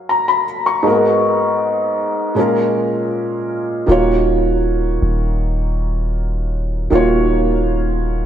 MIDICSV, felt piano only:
0, 0, Header, 1, 2, 480
1, 0, Start_track
1, 0, Key_signature, -6, "minor"
1, 0, Tempo, 759494
1, 535, Time_signature, 4, 2, 24, 8
1, 5219, End_track
2, 0, Start_track
2, 0, Title_t, "Felt piano"
2, 0, Program_c, 0, 0
2, 0, Control_c, 0, 64, 127
2, 0, Note_on_c, 0, 54, 70
2, 0, Note_on_c, 0, 66, 65
2, 0, Note_on_c, 0, 70, 63
2, 0, Note_on_c, 0, 73, 63
2, 0, Note_on_c, 0, 75, 65
2, 0, Note_on_c, 0, 77, 79
2, 58, Note_on_c, 0, 82, 62
2, 171, Note_off_c, 0, 82, 0
2, 178, Note_on_c, 0, 83, 71
2, 264, Note_off_c, 0, 54, 0
2, 267, Note_off_c, 0, 66, 0
2, 270, Note_off_c, 0, 70, 0
2, 274, Note_off_c, 0, 73, 0
2, 277, Note_off_c, 0, 75, 0
2, 280, Note_off_c, 0, 77, 0
2, 405, Note_off_c, 0, 83, 0
2, 419, Note_on_c, 0, 85, 65
2, 522, Note_on_c, 0, 44, 76
2, 529, Note_on_c, 0, 56, 67
2, 538, Note_on_c, 0, 58, 55
2, 542, Control_c, 0, 64, 0
2, 545, Note_on_c, 0, 66, 69
2, 553, Note_on_c, 0, 70, 82
2, 577, Note_off_c, 0, 58, 0
2, 578, Note_on_c, 0, 59, 69
2, 645, Note_off_c, 0, 85, 0
2, 649, Control_c, 0, 64, 127
2, 1469, Note_off_c, 0, 44, 0
2, 1473, Note_off_c, 0, 56, 0
2, 1481, Note_off_c, 0, 66, 0
2, 1483, Note_on_c, 0, 46, 72
2, 1485, Note_off_c, 0, 70, 0
2, 1490, Note_on_c, 0, 56, 63
2, 1498, Note_off_c, 0, 59, 0
2, 1498, Note_on_c, 0, 61, 64
2, 1502, Control_c, 0, 64, 0
2, 1506, Note_on_c, 0, 65, 65
2, 1514, Note_on_c, 0, 70, 81
2, 1599, Control_c, 0, 64, 127
2, 2430, Note_off_c, 0, 46, 0
2, 2433, Note_off_c, 0, 56, 0
2, 2437, Note_off_c, 0, 61, 0
2, 2441, Note_off_c, 0, 65, 0
2, 2442, Note_on_c, 0, 51, 74
2, 2445, Note_off_c, 0, 70, 0
2, 2451, Note_on_c, 0, 58, 70
2, 2459, Note_on_c, 0, 65, 68
2, 2462, Control_c, 0, 64, 0
2, 2467, Note_on_c, 0, 66, 73
2, 2475, Note_on_c, 0, 73, 85
2, 2581, Control_c, 0, 64, 127
2, 4343, Note_off_c, 0, 51, 0
2, 4347, Note_off_c, 0, 58, 0
2, 4352, Note_off_c, 0, 65, 0
2, 4356, Note_off_c, 0, 66, 0
2, 4360, Note_off_c, 0, 73, 0
2, 4363, Note_on_c, 0, 51, 77
2, 4370, Note_on_c, 0, 58, 70
2, 4379, Note_on_c, 0, 65, 75
2, 4387, Note_on_c, 0, 66, 74
2, 4394, Note_on_c, 0, 73, 88
2, 5219, Note_off_c, 0, 51, 0
2, 5219, Note_off_c, 0, 58, 0
2, 5219, Note_off_c, 0, 65, 0
2, 5219, Note_off_c, 0, 66, 0
2, 5219, Note_off_c, 0, 73, 0
2, 5219, End_track
0, 0, End_of_file